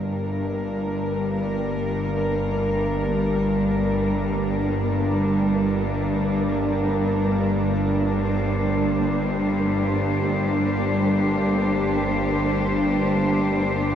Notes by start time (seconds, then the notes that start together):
Already playing: G1 G2 G3 A#3 D4 A#4
8.16 C5
9.62 G4